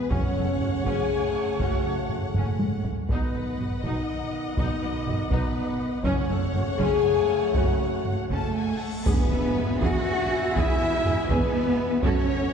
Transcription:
0.00 0.11 B4 medium
0.10 0.20 F#1 medium
0.10 0.82 F#2 medium
0.10 0.20 F#2 medium
0.10 2.81 C#3 medium
0.10 2.81 A3 medium
0.10 0.86 C#4 loud
0.10 0.34 C#4 medium
0.10 2.89 C#5 medium
0.10 0.85 C#5 medium
0.10 2.85 F#5 medium
0.10 taiko medium
0.36 0.44 F#1 medium
0.36 0.45 F#2 medium
0.36 0.45 A4 soft
0.60 0.68 F#1 medium
0.60 0.69 F#2 medium
0.60 0.70 F#4 medium
0.60 taiko low-mid soft
0.85 0.93 F#1 medium
0.85 0.95 F#2 medium
0.85 1.09 C#4 medium
0.85 1.60 G#4 loud
0.85 1.60 G#5 medium
0.85 taiko medium
1.60 1.68 F#1 medium
1.60 1.69 F#2 medium
1.60 1.84 C#4 medium
1.60 2.35 F#4 medium
1.60 2.34 F#5 medium
1.60 taiko medium
1.85 1.93 F#1 soft
1.85 1.93 F#2 soft
1.85 1.94 A4 soft
2.09 2.17 F#1 soft
2.09 2.18 F#2 soft
2.09 2.19 F#4 soft
2.09 taiko low-mid soft
2.34 2.42 F#1 medium
2.34 2.58 A2 medium
2.34 2.59 C#4 medium
2.34 taiko low-mid medium
2.60 2.85 G#2 medium
2.60 taiko high medium
2.84 3.09 F#2 medium
2.84 taiko low medium
3.08 3.18 B1 medium
3.08 3.16 B2 medium
3.08 6.01 D#3 medium
3.08 3.79 B3 medium
3.08 6.01 B3 medium
3.08 3.33 D#4 medium
3.08 3.79 B4 medium
3.08 6.01 D#5 medium
3.08 6.01 F#5 medium
3.08 taiko medium
3.33 3.42 B1 soft
3.33 3.41 B2 soft
3.33 3.43 B4 soft
3.58 3.67 B1 soft
3.58 3.66 B2 medium
3.58 3.67 F#4 medium
3.58 taiko low-mid soft
3.83 3.92 B1 medium
3.83 3.92 B2 medium
3.83 4.07 D#4 medium
3.83 4.55 D#4 medium
3.83 4.55 D#5 medium
3.83 taiko medium
4.56 4.67 B1 medium
4.56 4.66 B2 medium
4.56 5.29 D#4 medium
4.56 4.80 D#4 medium
4.56 5.29 D#5 medium
4.56 taiko medium
4.82 4.91 B1 soft
4.82 4.91 B2 medium
4.82 4.90 B4 soft
5.06 5.16 B1 medium
5.06 5.14 B2 soft
5.06 5.15 F#4 medium
5.06 taiko low-mid medium
5.29 5.39 B1 medium
5.29 5.39 B2 medium
5.29 6.04 B3 medium
5.29 5.54 D#4 medium
5.29 6.02 B4 medium
5.29 taiko medium
6.02 6.13 F#1 medium
6.02 6.12 F#2 medium
6.02 6.75 F#2 medium
6.02 8.77 C#3 medium
6.02 8.76 A3 medium
6.02 6.77 C#4 loud
6.02 6.27 C#4 medium
6.02 6.78 C#5 medium
6.02 8.86 C#5 medium
6.02 8.22 F#5 medium
6.02 taiko medium
6.28 6.38 F#1 medium
6.28 6.36 F#2 medium
6.28 6.39 A4 medium
6.53 6.62 F#1 medium
6.53 6.61 F#2 medium
6.53 6.63 F#4 medium
6.53 taiko low-mid soft
6.77 6.88 F#1 loud
6.77 6.86 F#2 medium
6.77 7.03 C#4 medium
6.77 7.53 G#4 loud
6.77 7.55 G#5 loud
6.77 taiko medium
7.54 7.62 F#1 medium
7.54 7.62 F#2 medium
7.54 7.79 C#4 medium
7.54 8.31 F#4 medium
7.54 8.78 F#5 medium
7.54 taiko loud
7.54 cymbal swell medium
7.80 7.88 F#1 soft
7.80 7.88 F#2 soft
7.80 7.88 A4 soft
8.05 8.13 F#1 soft
8.05 8.13 F#2 medium
8.05 8.13 F#4 soft
8.05 taiko low-mid medium
8.29 8.38 F#1 medium
8.29 8.39 F#2 medium
8.29 9.03 A3 medium
8.29 8.54 C#4 medium
8.29 9.09 A4 medium
8.29 9.02 A4 medium
8.29 8.55 A5 medium
8.29 taiko medium
8.56 8.81 G#5 medium
8.81 9.06 F#5 medium
9.06 9.14 E2 medium
9.06 11.98 B2 medium
9.06 11.98 G#3 medium
9.06 9.82 B3 medium
9.06 9.30 G#4 medium
9.06 9.82 B4 medium
9.06 9.84 B4 medium
9.06 11.98 E5 medium
9.06 11.98 G#5 medium
9.06 taiko loud
9.06 tam-tam medium
9.06 impact medium
9.31 9.39 E2 medium
9.31 9.40 G#4 soft
9.31 9.40 E5 medium
9.57 9.65 E2 medium
9.57 9.65 G#4 medium
9.57 9.65 B4 medium
9.57 taiko low-mid medium
9.81 9.89 E2 loud
9.81 10.40 F#4 loud
9.81 10.56 F#4 loud
9.81 10.05 G#4 medium
9.81 10.54 F#5 medium
9.81 10.58 F#5 loud
9.81 taiko medium
10.55 10.64 E2 loud
10.55 11.29 E4 loud
10.55 11.28 E4 medium
10.55 10.78 G#4 medium
10.55 11.29 E5 medium
10.55 11.28 E5 medium
10.55 taiko loud
10.80 10.89 E2 medium
10.80 10.88 G#4 medium
10.80 10.88 E5 medium
11.04 11.14 E2 medium
11.04 11.12 G#4 medium
11.04 11.13 B4 medium
11.04 taiko low-mid medium
11.28 11.38 E2 loud
11.28 12.02 B3 medium
11.28 12.02 B3 loud
11.28 11.52 G#4 medium
11.28 12.04 B4 loud
11.28 12.02 B4 medium
11.28 taiko medium
12.02 12.53 F#2 medium
12.02 12.12 F#2 loud
12.02 12.53 A3 loud
12.02 12.53 C#4 loud
12.02 12.26 F#4 loud
12.02 12.26 A4 medium
12.02 12.53 C#5 medium
12.02 12.53 C#5 loud
12.02 12.53 C#5 medium
12.02 12.53 F#5 medium
12.02 taiko loud
12.28 12.36 F#2 medium
12.28 12.36 A4 medium
12.28 12.36 C#5 medium

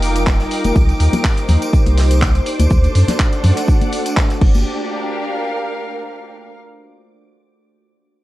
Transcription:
0.00 0.45 F1 loud
0.00 0.72 G3 medium
0.00 0.74 D#4 medium
0.00 2.46 D#4 medium
0.00 0.74 F4 medium
0.00 0.74 A#4 medium
0.00 2.46 A#4 medium
0.00 1.44 F5 medium
0.00 2.46 G5 medium
0.00 4.67 D6 medium
0.00 open hi-hat loud
0.00 shaker medium
0.16 closed hi-hat medium
0.16 tambourine medium
0.26 kick loud
0.26 snare loud
0.26 clap loud
0.26 tambourine medium
0.26 high conga medium
0.26 shaker medium
0.40 snare soft
0.40 closed hi-hat soft
0.40 tambourine soft
0.51 open hi-hat medium
0.51 shaker medium
0.64 0.72 F1 loud
0.64 closed hi-hat medium
0.64 tambourine medium
0.64 high conga medium
0.76 0.93 C2 loud
0.76 2.45 A#3 medium
0.76 2.45 D#4 medium
0.76 2.45 G4 medium
0.76 4.38 C5 medium
0.76 kick loud
0.76 tambourine medium
0.76 low conga medium
0.76 shaker medium
0.89 closed hi-hat soft
0.89 tambourine soft
1.00 1.08 D#2 medium
1.00 open hi-hat loud
1.00 shaker medium
1.13 closed hi-hat medium
1.13 tambourine medium
1.13 high conga medium
1.13 low conga medium
1.18 4.41 C5 medium
1.24 kick loud
1.24 snare loud
1.24 clap loud
1.24 open hi-hat medium
1.24 tambourine medium
1.37 closed hi-hat soft
1.37 closed hi-hat medium
1.37 tambourine soft
1.48 1.57 D#2 loud
1.48 open hi-hat medium
1.48 high conga medium
1.48 low conga medium
1.48 shaker medium
1.62 closed hi-hat medium
1.62 tambourine medium
1.73 kick loud
1.73 tambourine medium
1.73 shaker medium
1.86 2.40 C2 loud
1.86 closed hi-hat medium
1.86 tambourine soft
1.86 high conga medium
1.97 snare loud
1.97 open hi-hat medium
1.97 open hi-hat loud
2.10 closed hi-hat medium
2.10 closed hi-hat soft
2.10 tambourine medium
2.22 kick loud
2.22 snare loud
2.22 clap loud
2.22 high conga medium
2.22 shaker medium
2.35 closed hi-hat soft
2.35 tambourine soft
2.46 4.40 A3 medium
2.46 4.40 D4 medium
2.46 4.40 F#4 medium
2.46 open hi-hat medium
2.46 shaker medium
2.60 2.67 D2 loud
2.60 closed hi-hat medium
2.60 tambourine medium
2.60 high conga medium
2.64 4.42 A4 medium
2.70 2.88 D2 loud
2.70 kick loud
2.70 tambourine medium
2.70 low conga medium
2.70 shaker medium
2.84 closed hi-hat soft
2.84 tambourine soft
2.95 3.03 F#2 loud
2.95 open hi-hat loud
2.95 shaker medium
3.08 snare medium
3.08 closed hi-hat medium
3.08 tambourine medium
3.08 high conga medium
3.08 low conga medium
3.19 4.42 F#5 medium
3.19 kick loud
3.19 snare loud
3.19 clap loud
3.19 shaker medium
3.33 closed hi-hat medium
3.33 tambourine soft
3.44 3.52 F#2 loud
3.44 open hi-hat medium
3.44 low conga medium
3.44 shaker medium
3.56 snare soft
3.56 closed hi-hat medium
3.56 tambourine medium
3.68 kick loud
3.68 tambourine medium
3.68 shaker medium
3.81 closed hi-hat medium
3.81 tambourine soft
3.81 high conga medium
3.92 open hi-hat loud
3.92 shaker medium
4.06 closed hi-hat medium
4.06 tambourine medium
4.16 kick loud
4.16 snare loud
4.16 clap loud
4.16 tambourine medium
4.16 high conga medium
4.16 shaker medium
4.30 snare medium
4.30 closed hi-hat soft
4.30 tambourine soft
4.41 4.64 G1 medium
4.41 6.33 D4 medium
4.41 kick loud
4.41 crash medium
4.49 6.33 G4 medium
4.55 tambourine medium
4.55 high conga medium
4.81 6.57 A#4 medium
4.88 6.57 F5 medium

